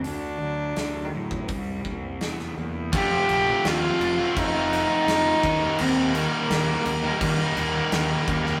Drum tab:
CC |----------------|x-x-x-x-x-x-x-x-|x-x-x-x-x-x-x-x-|
HH |o---o---o---o---|----------------|----------------|
SD |----o-------oo--|----o-------o---|----o-------o--o|
BD |-------oo-o-----|o-------o-----o-|--------o-----o-|